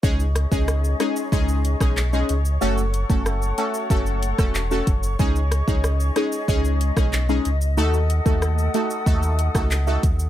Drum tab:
HH |--x---x---x---x-|--x---x---x---x-|--x---x---x---x-|--x---x---x---x-|
SH |xxxxxxxxxxxxxxxx|xxxxxxxxxxxxxxxx|xxxxxxxxxxxxxxxx|xxxxxxxxxxxxxxxx|
CP |------------x---|------------x---|------------x---|------------x---|
SD |--r-r-r----r----|----r------r----|--r-r-r----r----|----r------r----|
BD |o--o----o--o----|---o----o--o--o-|o--o----o--o----|---o----o--o--o-|